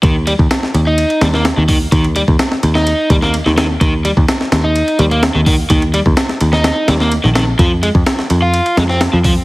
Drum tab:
RD |x-x-x-x-xxx-x---|xxx-x-x-x-x-x-x-|x-x-x-x-xxxxx---|xxx-x-x-x-x-x-x-|
HH |--------------o-|----------------|--------------o-|----------------|
SD |----oo----ooo---|----oo-o---o-oo-|----ooo-----o---|----oo-oo-oo-oo-|
BD |o--o----------o-|o--o------o-----|o--o----------o-|o--o------------|

RD |x-x-x-x-xxx-x---|
HH |--------------o-|
SD |----oo----ooo---|
BD |o--o----------o-|